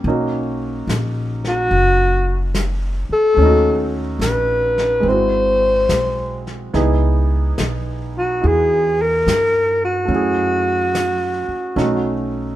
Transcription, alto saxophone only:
1.47 2.52 F#4 loud
3.13 3.91 A4 loud
4.22 5.10 B4 medium
5.09 6.48 C5 medium
8.18 8.48 F#4 medium
8.47 9.03 G#4 medium
9.02 9.84 A#4 medium
9.85 12.29 F#4 medium

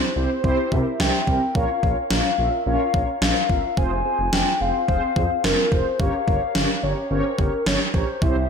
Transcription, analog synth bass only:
0.16 0.27 C2 medium
0.44 0.54 C2 loud
0.72 0.82 C3 medium
1.00 1.10 C2 loud
1.27 1.38 C2 loud
1.55 1.65 A#1 loud
1.83 1.93 A#1 loud
2.11 2.21 A#1 loud
2.38 2.49 A#1 loud
2.66 2.77 A#1 loud
2.94 3.04 A#1 medium
3.22 3.32 A#1 loud
3.49 3.60 G1 medium
3.77 3.88 F1 loud
3.91 4.01 F1 loud
4.19 4.29 F1 loud
4.33 4.43 F1 medium
4.61 4.71 F1 loud
4.88 4.99 F1 medium
5.16 5.27 F2 loud
5.44 5.54 F1 loud
5.72 5.82 F1 loud
6.00 6.10 G1 loud
6.28 6.38 G1 loud
6.55 6.66 G1 loud
6.83 6.93 G1 loud
7.11 7.21 G1 loud
7.39 7.49 G1 loud
7.66 7.77 G1 loud
7.94 8.04 A#1 loud
8.22 8.32 C2 loud
8.36 8.46 C2 loud

